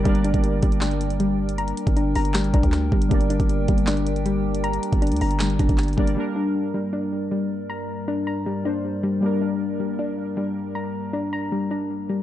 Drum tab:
HH |x-x-x-x-x---x-x-x-x-x-x-x-----x-|x-x-x-x-x---o-x-x-x-x-x-x-----x-|x-x-x-x-x---x-x-x-x-x-x-x-----x-|x-x-x-x-xxxxo-x-x-x-x-x-xxxx--x-|
CP |----------------x---------------|----------------x-------x-------|----------------x---------------|----------------x-------x-------|
SD |----------------o---------------|----------------o-------o-------|----------------o---------------|----------------o-------o-------|
BD |o-----o-----o-------------------|------o-------------o-o-----o---|o-----o-----o-------------------|------o-------------o-o-----o---|

HH |--------------------------------|--------------------------------|--------------------------------|--------------------------------|
CP |--------------------------------|--------------------------------|--------------------------------|--------------------------------|
SD |--------------------------------|--------------------------------|--------------------------------|--------------------------------|
BD |--------------------------------|--------------------------------|--------------------------------|--------------------------------|